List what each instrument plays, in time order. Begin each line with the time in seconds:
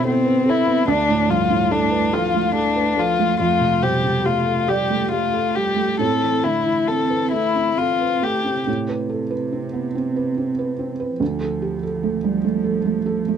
Already playing: felt piano A2 B2 D3 E3 A4 B4 C5
0.05 cello B3, violin C4, felt piano A4
0.25 felt piano B4
0.45 cello C4, violin E4, felt piano A4
0.66 felt piano B3
0.87 felt piano D2 D5, cello A3, violin D4
1.09 felt piano A2
1.29 felt piano G2, cello F3, violin F4
1.50 felt piano A2
1.71 cello A3, violin D4, felt piano A4
1.91 felt piano B4
2.13 cello F3, violin F4, felt piano A4 F5
2.34 felt piano A3
2.55 cello A3, violin D4, felt piano A4
2.76 felt piano B4
2.97 cello F3, violin F4, felt piano A4
3.19 felt piano A3
3.40 felt piano F2, cello A3, violin F4
3.61 felt piano C3
3.82 felt piano B2 C5, cello G3, violin G4
4.04 felt piano C3
4.24 cello A3, violin F4, felt piano G4
4.46 felt piano A4
4.68 cello G3, felt piano G4 D5, violin G4
4.90 felt piano A3
5.12 cello A3, violin F4, felt piano G4
5.33 felt piano A4
5.55 cello G3, felt piano G4, violin G4
5.76 felt piano A3
5.99 felt piano A2 A4, cello C4, violin A4
6.22 felt piano E3
6.44 felt piano D3, cello A3, violin E4
6.66 felt piano E3
6.88 cello C4, felt piano A4, violin A4
7.10 felt piano B4
7.32 cello A3, violin E4, felt piano A4
7.55 felt piano C4
7.77 cello C4, violin F4, felt piano A4
8.01 felt piano B4
8.22 cello A3, violin G4, felt piano A4
8.44 felt piano C4
8.66 felt piano A2, cello C3
8.89 felt piano B4
9.09 felt piano A4
9.31 felt piano B4
9.52 felt piano C4
9.73 felt piano B3
9.95 felt piano C4
10.16 felt piano B4
10.38 felt piano C4
10.59 felt piano B4
10.79 felt piano C4
11.00 felt piano B4
11.19 felt piano D2, cello F3
11.41 felt piano A4
11.62 felt piano G4
11.83 felt piano A4
12.03 felt piano A3
12.24 felt piano G3
12.44 felt piano A3
12.64 felt piano A4
12.85 felt piano A3
13.06 felt piano A4
13.28 felt piano A3